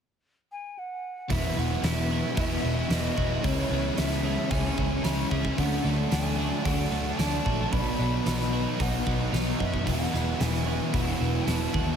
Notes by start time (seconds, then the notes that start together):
0.52 G#5
0.78 F#5
1.28 E1 E2 B2 E3 F#3 B3 E4 E5, kick, open hi-hat
1.55 E1 B2 E3 F#3 B3 E4 F#5
1.83 E1 E2 B2 E3 F#3 B3 E4 E5, snare, open hi-hat
2.10 F#3 B3 E4 F#4
2.35 E1 E2 B2 E3 F#3 B3 E4, kick, open hi-hat
2.39 E5
2.63 E1 E3 F#3 B3 E4
2.88 E1 E2 B2 E3 F#3 B3 D#5, snare, open hi-hat
2.92 E4
3.16 E1 F#3 B3 E4 F#4, kick
3.42 C#2 C#3 E3 G#3 C#4 E4 C#5, kick, open hi-hat
3.70 C#2 G#3 B3 C#4 E4
3.96 C#2 C#3 G#3 C#4 E4 E5, snare, open hi-hat
4.12 snare
4.23 G#3 C#4 E4 G#4
4.50 C#2 C#3 G#3 C#4 E4 G#5, kick, open hi-hat
4.76 C#2 E3 G#3 C#4 E4, kick
5.04 C#2 C#3 G#3 C#4 E4 B5, snare, open hi-hat
5.30 C#2 G#3 C#4 E4 G#4 E5, kick
5.45 kick
5.57 D2 D3 F#3 A3 D4 F#5, kick, open hi-hat
5.84 D2 F#3 A3 D4
6.11 D2 D3 F#3 A3 D4 G#5, snare, open hi-hat
6.38 F#3 A3 D4 F#4
6.65 D2 D3 F#3 A3 D4 F#5, kick, open hi-hat
6.91 D2 F#3 A3 D4
7.18 D2 D3 F#3 A3 D4 A5, snare, open hi-hat
7.45 A#1 F#3 A3 D4 F#4, kick
7.72 B1 B2 F#3 B3 D#4 B5, kick, open hi-hat
7.99 B1 F#3 B3 D#4
8.25 B1 B2 F#3 B3 D#4 B5, snare, open hi-hat
8.41 snare
8.52 F#3 B3 D#4 F#4
8.79 B1 B2 F#3 B3 D#4 F#5, kick, open hi-hat
9.06 B1 F#3 B3 D#4, kick
9.32 B1 B2 F#3 B3 D#4, snare, open hi-hat
9.59 F#2 F#3 B3 D#4 F#4 E5, kick
9.74 kick
9.85 E1 E2 B2 E3 F#3 B3 E4, kick, open hi-hat
9.89 F#5
10.12 E1 B2 E3 F#3 B3 E4, snare
10.38 E1 E2 B2 E3 F#3 B3 E4 G#5, snare, open hi-hat
10.55 snare
10.66 F#3 B3 E4 F#4
10.92 E1 E2 B2 E3 F#3 B3 E4 F#5, kick, open hi-hat
11.20 E1 E3 F#3 B3 E4
11.46 E1 E2 B2 E3 F#3 B3 E4 A5, snare, open hi-hat
11.73 D#2 F#3 B3 E4 F#4, kick